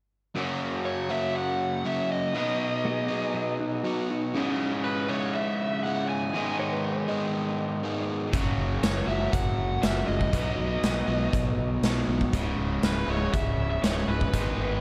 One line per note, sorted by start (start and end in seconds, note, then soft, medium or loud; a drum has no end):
0.35 1.08 F#2 medium
0.35 1.09 C#3 medium
0.35 1.11 F#3 medium
0.35 1.09 A#3 medium
0.35 1.09 C#4 medium
0.35 1.09 F#4 medium
0.85 1.11 C#5 medium
1.09 1.83 F#2 medium
1.09 1.84 C#3 medium
1.09 1.84 F#3 medium
1.09 1.84 A#3 medium
1.09 1.83 C#4 medium
1.09 1.83 F#4 medium
1.09 1.34 E5 medium
1.36 1.87 F#5 medium
1.84 2.33 F#2 medium
1.84 2.33 C#3 medium
1.84 2.32 F#3 medium
1.84 2.34 A#3 medium
1.84 2.34 C#4 medium
1.84 2.34 F#4 medium
1.84 2.11 E5 medium
2.12 3.56 D#5 medium
2.33 3.07 B2 medium
2.33 3.08 F#3 medium
2.33 3.08 B3 medium
2.33 3.08 D#4 medium
2.33 3.08 F#4 medium
2.33 3.07 B4 medium
2.85 3.09 B3 medium
2.85 3.09 G#4 medium
3.08 3.83 B2 medium
3.08 3.83 F#3 medium
3.08 3.83 B3 medium
3.08 3.33 B3 medium
3.08 3.83 D#4 medium
3.08 3.83 F#4 medium
3.08 3.34 G#4 medium
3.08 3.82 B4 medium
3.34 3.58 B3 medium
3.34 3.59 G#4 medium
3.60 3.83 D#4 medium
3.60 3.84 F#4 medium
3.84 4.33 B2 medium
3.84 4.33 F#3 medium
3.84 4.33 B3 medium
3.84 4.07 D#4 medium
3.84 4.33 D#4 medium
3.84 4.09 F#4 medium
3.84 4.33 F#4 medium
3.84 4.34 B4 medium
4.11 4.33 D#4 medium
4.11 4.34 F#4 medium
4.34 5.07 C#2 medium
4.34 5.08 G#2 medium
4.34 5.08 C#3 medium
4.34 5.09 G#3 medium
4.34 4.71 C#4 medium
4.34 5.07 E4 medium
4.84 5.10 B4 medium
5.09 5.83 C#2 medium
5.09 5.83 G#2 medium
5.09 5.83 C#3 medium
5.09 5.82 G#3 medium
5.09 5.82 E4 medium
5.09 5.34 C#5 medium
5.35 5.86 E5 medium
5.83 6.32 C#2 medium
5.83 6.33 G#2 medium
5.83 6.33 C#3 medium
5.83 6.33 G#3 medium
5.83 6.33 E4 medium
5.83 6.09 F#5 medium
6.09 6.55 G#5 medium
6.34 7.07 G#2 medium
6.34 7.07 D#3 medium
6.34 7.08 G#3 medium
6.34 7.08 B3 medium
6.34 7.07 D#4 medium
6.34 7.07 G#4 medium
6.60 6.71 C#5 medium
6.72 6.97 B4 medium
6.97 7.09 C#5 medium
7.08 7.82 G#2 medium
7.08 7.82 D#3 medium
7.08 7.83 G#3 medium
7.08 7.82 B3 medium
7.08 7.82 D#4 medium
7.08 7.82 G#4 medium
7.08 8.05 D#5 medium
7.83 8.32 G#2 medium
7.83 8.32 D#3 medium
7.83 8.32 G#3 medium
7.83 8.32 B3 medium
7.83 8.32 D#4 medium
7.83 8.33 G#4 medium
8.32 8.52 F#1 medium
8.32 9.06 F#2 medium
8.32 9.07 C#3 medium
8.32 9.08 F#3 medium
8.32 9.07 A#3 medium
8.32 9.07 C#4 medium
8.32 9.07 F#4 medium
8.32 kick loud
8.32 closed hi-hat medium
8.58 8.77 F#1 medium
8.83 9.02 F#1 medium
8.83 9.07 C#5 medium
8.83 snare loud
8.83 closed hi-hat medium
9.07 9.27 F#1 medium
9.07 9.80 F#2 medium
9.07 9.81 C#3 medium
9.07 9.81 F#3 medium
9.07 9.82 A#3 medium
9.07 9.81 C#4 medium
9.07 9.81 F#4 medium
9.07 9.34 E5 medium
9.32 9.52 F#1 medium
9.32 9.84 F#5 medium
9.32 kick medium
9.32 closed hi-hat medium
9.58 9.77 F#1 medium
9.81 10.02 F#1 medium
9.81 10.31 F#2 medium
9.81 10.31 C#3 medium
9.81 10.31 F#3 medium
9.81 10.31 A#3 medium
9.81 10.32 C#4 medium
9.81 10.32 F#4 medium
9.81 10.07 E5 medium
9.81 snare loud
9.81 closed hi-hat medium
10.07 10.28 F#1 medium
10.07 11.54 D#5 medium
10.21 kick medium
10.32 10.52 B1 medium
10.32 11.06 B2 medium
10.32 11.06 F#3 medium
10.32 11.06 B3 medium
10.32 11.07 D#4 medium
10.32 11.06 F#4 medium
10.32 11.06 B4 medium
10.32 kick medium
10.32 closed hi-hat medium
10.58 10.77 B1 medium
10.83 11.02 B1 medium
10.83 snare medium
10.83 closed hi-hat medium
11.07 11.27 B1 medium
11.07 11.81 B2 medium
11.07 11.82 F#3 medium
11.07 11.82 B3 medium
11.07 11.82 D#4 medium
11.07 11.81 F#4 medium
11.07 11.81 B4 medium
11.33 11.52 B1 medium
11.33 kick medium
11.33 closed hi-hat medium
11.58 11.77 B1 medium
11.83 12.02 B1 medium
11.83 12.31 B2 medium
11.83 12.32 F#3 medium
11.83 12.32 B3 medium
11.83 12.32 D#4 medium
11.83 12.33 F#4 medium
11.83 12.33 B4 medium
11.83 snare loud
11.83 closed hi-hat medium
12.08 12.27 B1 medium
12.21 kick medium
12.33 12.52 C#1 medium
12.33 13.07 C#2 medium
12.33 13.07 G#2 medium
12.33 13.07 C#3 medium
12.33 13.07 G#3 medium
12.33 13.07 E4 medium
12.33 kick medium
12.33 closed hi-hat medium
12.58 12.77 C#1 medium
12.83 13.02 C#1 medium
12.83 13.10 B4 medium
12.83 snare loud
12.83 closed hi-hat soft
13.08 13.27 C#1 medium
13.08 13.82 C#2 medium
13.08 13.82 G#2 medium
13.08 13.83 C#3 medium
13.08 13.82 G#3 medium
13.08 13.82 E4 medium
13.08 13.32 C#5 medium
13.33 13.53 C#1 medium
13.33 13.69 E5 medium
13.33 kick loud
13.33 closed hi-hat medium
13.58 13.77 C#1 medium
13.70 13.83 E5 medium
13.83 14.02 C#1 medium
13.83 14.32 C#2 medium
13.83 14.32 G#2 medium
13.83 14.32 C#3 medium
13.83 14.33 G#3 medium
13.83 14.33 E4 medium
13.83 14.09 C#5 medium
13.83 snare medium
13.83 closed hi-hat medium
14.08 14.27 C#1 medium
14.08 14.81 B4 medium
14.21 kick medium
14.33 14.52 G#1 medium
14.33 14.81 G#2 medium
14.33 14.81 D#3 medium
14.33 14.81 G#3 medium
14.33 14.81 B3 medium
14.33 14.81 D#4 medium
14.33 14.81 G#4 medium
14.33 kick medium
14.33 closed hi-hat medium
14.58 14.77 G#1 medium